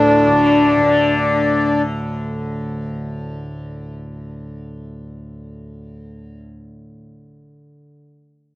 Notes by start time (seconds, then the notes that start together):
Already playing: D2 A2 D3 D4
0.27 D3
0.77 D3